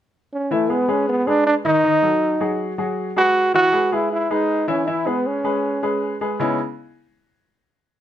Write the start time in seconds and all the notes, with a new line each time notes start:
0.33 C#4
0.51 E3 A3 E4 E5
0.70 G#3 B3 G#4 B4
0.88 G#3 C#4 G#4 B4
1.09 B3
1.27 G#3 D4 G#4 B4
1.47 D4
1.65 D#3 D#4 D#5
1.84 D#3 D#4 D#5
2.02 F#3 F#4 A4
2.40 F#3 F#4 G#4
2.78 F#3 F#4 G#4
3.16 G#3 F#4 G#4 B4
3.54 E3 E4 F#4 E5
3.72 G#3 G#4 B4
3.92 G#3 E4 G#4 B4
4.13 E4
4.30 G#3 D#4 G#4 B4
4.68 E3 C#4 E4 E5
4.87 E3 E4 E5
5.06 G#3 B3 G#4 B4
5.27 C#4
5.44 G#3 G#4 B4
5.83 G#3 G#4 B4
6.21 G#3 G#4 B4
6.40 C#3 G#3 B3 C#4 D#4 E4